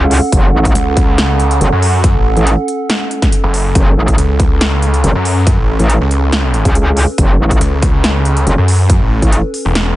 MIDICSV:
0, 0, Header, 1, 5, 480
1, 0, Start_track
1, 0, Key_signature, 3, "minor"
1, 0, Tempo, 428571
1, 364, Time_signature, 4, 2, 24, 8
1, 11155, End_track
2, 0, Start_track
2, 0, Title_t, "Ambient pad"
2, 0, Program_c, 0, 92
2, 0, Note_on_c, 0, 61, 83
2, 0, Note_on_c, 0, 69, 71
2, 0, Note_on_c, 0, 78, 72
2, 4454, Note_on_c, 0, 71, 73
2, 4481, Note_off_c, 0, 78, 0
2, 11155, Note_off_c, 0, 61, 0
2, 11155, Note_off_c, 0, 69, 0
2, 11155, Note_off_c, 0, 71, 0
2, 11155, End_track
3, 0, Start_track
3, 0, Title_t, "Detuned saw bass"
3, 0, Program_c, 1, 39
3, 843, Note_on_c, 1, 37, 96
3, 1785, Note_off_c, 1, 37, 0
3, 1930, Note_on_c, 1, 42, 98
3, 2390, Note_off_c, 1, 42, 0
3, 2410, Note_on_c, 1, 33, 96
3, 2630, Note_off_c, 1, 33, 0
3, 3850, Note_on_c, 1, 30, 100
3, 4185, Note_off_c, 1, 30, 0
3, 4683, Note_on_c, 1, 37, 96
3, 5625, Note_off_c, 1, 37, 0
3, 5770, Note_on_c, 1, 42, 97
3, 6230, Note_off_c, 1, 42, 0
3, 6251, Note_on_c, 1, 33, 95
3, 6470, Note_off_c, 1, 33, 0
3, 6731, Note_on_c, 1, 37, 101
3, 7430, Note_off_c, 1, 37, 0
3, 8524, Note_on_c, 1, 37, 94
3, 9465, Note_off_c, 1, 37, 0
3, 9611, Note_on_c, 1, 42, 99
3, 10070, Note_off_c, 1, 42, 0
3, 10090, Note_on_c, 1, 33, 96
3, 10310, Note_off_c, 1, 33, 0
3, 10810, Note_on_c, 1, 28, 100
3, 11155, Note_off_c, 1, 28, 0
3, 11155, End_track
4, 0, Start_track
4, 0, Title_t, "Wobble bass"
4, 0, Program_c, 2, 39
4, 0, Note_on_c, 2, 37, 97
4, 230, Note_off_c, 2, 37, 0
4, 363, Note_on_c, 2, 30, 99
4, 585, Note_off_c, 2, 30, 0
4, 603, Note_on_c, 2, 33, 99
4, 825, Note_off_c, 2, 33, 0
4, 1803, Note_on_c, 2, 30, 99
4, 1910, Note_off_c, 2, 30, 0
4, 2650, Note_on_c, 2, 33, 96
4, 2870, Note_off_c, 2, 33, 0
4, 4203, Note_on_c, 2, 30, 99
4, 4425, Note_off_c, 2, 30, 0
4, 4443, Note_on_c, 2, 33, 98
4, 4665, Note_off_c, 2, 33, 0
4, 5643, Note_on_c, 2, 30, 100
4, 5750, Note_off_c, 2, 30, 0
4, 6490, Note_on_c, 2, 33, 99
4, 6710, Note_off_c, 2, 33, 0
4, 7450, Note_on_c, 2, 37, 98
4, 7910, Note_off_c, 2, 37, 0
4, 8044, Note_on_c, 2, 30, 98
4, 8265, Note_off_c, 2, 30, 0
4, 8284, Note_on_c, 2, 33, 100
4, 8505, Note_off_c, 2, 33, 0
4, 9483, Note_on_c, 2, 30, 98
4, 9590, Note_off_c, 2, 30, 0
4, 10330, Note_on_c, 2, 33, 97
4, 10550, Note_off_c, 2, 33, 0
4, 11155, End_track
5, 0, Start_track
5, 0, Title_t, "Drums"
5, 123, Note_on_c, 9, 46, 99
5, 235, Note_off_c, 9, 46, 0
5, 363, Note_on_c, 9, 36, 127
5, 363, Note_on_c, 9, 42, 91
5, 475, Note_off_c, 9, 36, 0
5, 475, Note_off_c, 9, 42, 0
5, 730, Note_on_c, 9, 36, 65
5, 730, Note_on_c, 9, 42, 55
5, 842, Note_off_c, 9, 36, 0
5, 842, Note_off_c, 9, 42, 0
5, 843, Note_on_c, 9, 42, 86
5, 955, Note_off_c, 9, 42, 0
5, 1083, Note_on_c, 9, 36, 113
5, 1083, Note_on_c, 9, 42, 56
5, 1195, Note_off_c, 9, 36, 0
5, 1195, Note_off_c, 9, 42, 0
5, 1323, Note_on_c, 9, 38, 127
5, 1323, Note_on_c, 9, 42, 86
5, 1435, Note_off_c, 9, 38, 0
5, 1435, Note_off_c, 9, 42, 0
5, 1563, Note_on_c, 9, 42, 57
5, 1675, Note_off_c, 9, 42, 0
5, 1691, Note_on_c, 9, 42, 57
5, 1803, Note_off_c, 9, 42, 0
5, 1804, Note_on_c, 9, 42, 84
5, 1916, Note_off_c, 9, 42, 0
5, 2044, Note_on_c, 9, 46, 95
5, 2156, Note_off_c, 9, 46, 0
5, 2283, Note_on_c, 9, 36, 127
5, 2283, Note_on_c, 9, 42, 84
5, 2395, Note_off_c, 9, 36, 0
5, 2395, Note_off_c, 9, 42, 0
5, 2650, Note_on_c, 9, 42, 52
5, 2762, Note_off_c, 9, 42, 0
5, 2763, Note_on_c, 9, 42, 83
5, 2875, Note_off_c, 9, 42, 0
5, 3003, Note_on_c, 9, 42, 54
5, 3115, Note_off_c, 9, 42, 0
5, 3243, Note_on_c, 9, 38, 123
5, 3243, Note_on_c, 9, 42, 81
5, 3355, Note_off_c, 9, 38, 0
5, 3355, Note_off_c, 9, 42, 0
5, 3483, Note_on_c, 9, 42, 55
5, 3595, Note_off_c, 9, 42, 0
5, 3610, Note_on_c, 9, 36, 111
5, 3610, Note_on_c, 9, 38, 38
5, 3610, Note_on_c, 9, 42, 53
5, 3722, Note_off_c, 9, 36, 0
5, 3722, Note_off_c, 9, 38, 0
5, 3722, Note_off_c, 9, 42, 0
5, 3723, Note_on_c, 9, 42, 81
5, 3835, Note_off_c, 9, 42, 0
5, 3963, Note_on_c, 9, 46, 90
5, 4075, Note_off_c, 9, 46, 0
5, 4203, Note_on_c, 9, 36, 122
5, 4203, Note_on_c, 9, 42, 83
5, 4315, Note_off_c, 9, 36, 0
5, 4315, Note_off_c, 9, 42, 0
5, 4570, Note_on_c, 9, 36, 60
5, 4570, Note_on_c, 9, 42, 53
5, 4682, Note_off_c, 9, 36, 0
5, 4682, Note_off_c, 9, 42, 0
5, 4683, Note_on_c, 9, 42, 79
5, 4795, Note_off_c, 9, 42, 0
5, 4923, Note_on_c, 9, 36, 109
5, 4924, Note_on_c, 9, 42, 52
5, 5035, Note_off_c, 9, 36, 0
5, 5036, Note_off_c, 9, 42, 0
5, 5163, Note_on_c, 9, 38, 122
5, 5163, Note_on_c, 9, 42, 80
5, 5275, Note_off_c, 9, 38, 0
5, 5275, Note_off_c, 9, 42, 0
5, 5403, Note_on_c, 9, 42, 54
5, 5515, Note_off_c, 9, 42, 0
5, 5530, Note_on_c, 9, 42, 51
5, 5642, Note_off_c, 9, 42, 0
5, 5643, Note_on_c, 9, 42, 80
5, 5755, Note_off_c, 9, 42, 0
5, 5883, Note_on_c, 9, 46, 92
5, 5995, Note_off_c, 9, 46, 0
5, 6123, Note_on_c, 9, 36, 117
5, 6123, Note_on_c, 9, 42, 83
5, 6235, Note_off_c, 9, 36, 0
5, 6235, Note_off_c, 9, 42, 0
5, 6490, Note_on_c, 9, 42, 52
5, 6602, Note_off_c, 9, 42, 0
5, 6603, Note_on_c, 9, 42, 80
5, 6715, Note_off_c, 9, 42, 0
5, 6843, Note_on_c, 9, 42, 53
5, 6955, Note_off_c, 9, 42, 0
5, 7083, Note_on_c, 9, 38, 118
5, 7083, Note_on_c, 9, 42, 78
5, 7195, Note_off_c, 9, 38, 0
5, 7195, Note_off_c, 9, 42, 0
5, 7324, Note_on_c, 9, 42, 53
5, 7436, Note_off_c, 9, 42, 0
5, 7450, Note_on_c, 9, 36, 106
5, 7450, Note_on_c, 9, 42, 53
5, 7562, Note_off_c, 9, 36, 0
5, 7562, Note_off_c, 9, 42, 0
5, 7564, Note_on_c, 9, 42, 81
5, 7676, Note_off_c, 9, 42, 0
5, 7803, Note_on_c, 9, 46, 96
5, 7915, Note_off_c, 9, 46, 0
5, 8044, Note_on_c, 9, 36, 118
5, 8044, Note_on_c, 9, 42, 87
5, 8156, Note_off_c, 9, 36, 0
5, 8156, Note_off_c, 9, 42, 0
5, 8410, Note_on_c, 9, 36, 61
5, 8411, Note_on_c, 9, 42, 54
5, 8522, Note_off_c, 9, 36, 0
5, 8523, Note_off_c, 9, 42, 0
5, 8524, Note_on_c, 9, 42, 80
5, 8636, Note_off_c, 9, 42, 0
5, 8764, Note_on_c, 9, 36, 100
5, 8764, Note_on_c, 9, 42, 55
5, 8876, Note_off_c, 9, 36, 0
5, 8876, Note_off_c, 9, 42, 0
5, 9004, Note_on_c, 9, 38, 119
5, 9004, Note_on_c, 9, 42, 81
5, 9116, Note_off_c, 9, 38, 0
5, 9116, Note_off_c, 9, 42, 0
5, 9244, Note_on_c, 9, 42, 54
5, 9356, Note_off_c, 9, 42, 0
5, 9371, Note_on_c, 9, 42, 52
5, 9483, Note_off_c, 9, 42, 0
5, 9484, Note_on_c, 9, 42, 79
5, 9596, Note_off_c, 9, 42, 0
5, 9724, Note_on_c, 9, 46, 98
5, 9836, Note_off_c, 9, 46, 0
5, 9963, Note_on_c, 9, 36, 120
5, 9964, Note_on_c, 9, 42, 90
5, 10075, Note_off_c, 9, 36, 0
5, 10076, Note_off_c, 9, 42, 0
5, 10330, Note_on_c, 9, 36, 59
5, 10330, Note_on_c, 9, 42, 53
5, 10442, Note_off_c, 9, 36, 0
5, 10442, Note_off_c, 9, 42, 0
5, 10443, Note_on_c, 9, 42, 84
5, 10555, Note_off_c, 9, 42, 0
5, 10684, Note_on_c, 9, 46, 66
5, 10796, Note_off_c, 9, 46, 0
5, 10923, Note_on_c, 9, 38, 118
5, 10923, Note_on_c, 9, 42, 83
5, 11035, Note_off_c, 9, 38, 0
5, 11035, Note_off_c, 9, 42, 0
5, 11155, End_track
0, 0, End_of_file